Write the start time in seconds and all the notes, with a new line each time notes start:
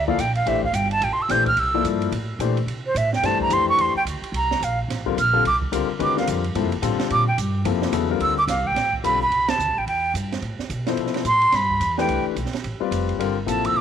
Already playing: D2
0.08 F3 A#3 E4 A4 D5 F5, kick
0.19 A#1 G5, hi-hat pedal, ride
0.35 F5, ride
0.46 A1 E3 A3 D4 G4 C5 E5, ride
0.63 F5, kick
0.73 G1 G5, hi-hat pedal, ride
0.91 A5, ride
1.01 A1 G5, ride
1.13 C6
1.18 muted upright bass stroke
1.22 E6
1.29 A#1 E3 A3 D4 G4 C5 G6, snare, hi-hat pedal, ride
1.46 F6, kick, ride
1.57 C2 E6, ride
1.74 F3 A#3 E4 A4 D5
1.84 G2, hi-hat pedal, ride
2.02 ride
2.12 A2, ride
2.39 A#2 E3 A3 D4 G4 C5, hi-hat pedal, ride
2.57 ride
2.66 C3, ride
2.87 C5
2.95 A2 E5, hi-hat pedal, ride
3.13 G5, snare
3.23 G2 E3 A3 D4 G4 C5 A5, snare, ride
3.40 A#5, kick
3.50 F2 E3 A3 D4 G4 C5 C6, hi-hat pedal, ride
3.69 C#6
3.78 E2 C6, ride
3.95 G5, muted upright bass stroke
4.05 D2, hi-hat pedal, ride
4.22 muted upright bass stroke, ride
4.32 C2, ride
4.36 A#5
4.51 snare
4.60 A#1 F5, hi-hat pedal, ride
4.88 A1, snare, ride
5.06 D3 G3 C4 F4 A#4, kick
5.17 A#1 F6, hi-hat pedal, ride
5.33 D3 G3 C4 F4 A4
5.44 C2 D6, ride
5.61 kick
5.72 C#2 D3 G3 C4 F4 A#4, hi-hat pedal, ride
5.99 D2 D#3 G#3 C#4 F#4 B4, ride
6.03 D6
6.16 D3 G3 C4 F4 A#4 F5, snare
6.27 F2, hi-hat pedal, ride
6.44 ride
6.55 G2 C3 F3 A#3 E4 A4, ride
6.64 F2
6.72 C2, ride
6.82 A2 D3 G3 C4 F4 A4, hi-hat pedal, ride
7.00 muted upright bass stroke, snare, ride
7.10 A#2 D6, ride
7.28 G5
7.38 G2, hi-hat pedal, ride
7.65 F2 C3 F3 A#3 E4 A4, ride
7.82 snare
7.92 E2 C#3 F#3 B3 E4 A4, hi-hat pedal, ride
8.10 D3 G3 C4 F4 A#4
8.20 D2 E6, ride
8.38 D6
8.47 C2 F5, snare, hi-hat pedal, ride
8.65 G5, kick
8.75 A1, snare, ride
8.93 kick
9.04 B1 D3 G3 C4 F4 A4 B5, hi-hat pedal, ride
9.22 B5
9.30 C2, ride
9.48 A5, snare, ride
9.58 D2, hi-hat pedal
9.68 C2
9.77 A1 G5
9.86 E2 G5, ride
10.14 G2, hi-hat pedal, ride
10.32 snare, ride
10.42 A2, ride
10.59 muted upright bass stroke, snare
10.69 B2, hi-hat pedal, ride
10.87 B2 F3 E4 A4 C5, snare, ride
10.97 C3, ride
11.06 snare
11.14 snare, ride
11.24 A2 C6, hi-hat pedal, ride
11.42 ride
11.52 G2 B5, snare, ride
11.70 kick
11.80 E2, hi-hat pedal, ride
11.98 E3 A3 D4 G4 B4 G5, snare
12.08 C2, ride
12.25 muted upright bass stroke
12.35 B1, hi-hat pedal, ride
12.46 snare
12.53 snare, ride
12.64 A1, ride
12.80 G3 C4 F4 B4 D5, muted upright bass stroke
12.91 F1, hi-hat pedal, ride
13.09 ride
13.18 G1 D3 G3 C4 F4 A#4, ride
13.46 A1 C3 F3 A#3 E4 A4 A5, hi-hat pedal, ride
13.65 E6, ride
13.74 A#1 D6